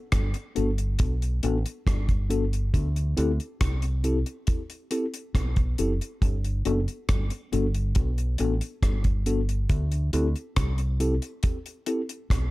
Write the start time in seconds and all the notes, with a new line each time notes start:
0.12 G1, kick, cross-stick, closed hi-hat
0.34 closed hi-hat
0.55 G1 B3 D4 F#4 A4, closed hi-hat
0.78 closed hi-hat
0.99 B1, kick, closed hi-hat
1.22 closed hi-hat
1.43 A1 B3 D4 F#4 A4, closed hi-hat
1.66 closed hi-hat
1.87 G1, kick, cross-stick, closed hi-hat
2.09 kick, closed hi-hat
2.30 B3 D4 F#4 A4, closed hi-hat
2.53 closed hi-hat
2.74 D2, kick, closed hi-hat
2.96 closed hi-hat
3.17 D2 C4 E4 G4 A4, closed hi-hat
3.40 closed hi-hat
3.61 C2, kick, cross-stick, closed hi-hat
3.82 closed hi-hat
4.04 C4 E4 G4 A4, closed hi-hat
4.26 closed hi-hat
4.47 kick, closed hi-hat
4.70 closed hi-hat
4.91 C4 E4 G4 A4, closed hi-hat
5.14 closed hi-hat
5.35 B1, kick, cross-stick, closed hi-hat
5.56 kick, closed hi-hat
5.78 F#1 C4 E4 G4 A4, closed hi-hat
6.01 closed hi-hat
6.22 G1, kick, closed hi-hat
6.44 closed hi-hat
6.65 F#1 B3 D4 F#4 A4, closed hi-hat
6.88 closed hi-hat
7.09 G1, kick, cross-stick, closed hi-hat
7.30 closed hi-hat
7.52 G1 B3 D4 F#4 A4, closed hi-hat
7.74 closed hi-hat
7.95 B1, kick, closed hi-hat
8.18 closed hi-hat
8.38 A1 B3 D4 F#4 A4, closed hi-hat
8.61 closed hi-hat
8.83 G1, kick, cross-stick, closed hi-hat
9.04 kick, closed hi-hat
9.26 B3 D4 F#4 A4, closed hi-hat
9.49 closed hi-hat
9.69 D2, kick, closed hi-hat
9.92 closed hi-hat
10.13 D2 C4 E4 G4 A4, closed hi-hat
10.36 closed hi-hat
10.56 C2, kick, cross-stick, closed hi-hat
10.78 closed hi-hat
11.00 C4 E4 G4 A4, closed hi-hat
11.22 closed hi-hat
11.43 kick, closed hi-hat
11.66 closed hi-hat
11.86 C4 E4 G4 A4, closed hi-hat
12.09 closed hi-hat
12.30 B1, kick, cross-stick, closed hi-hat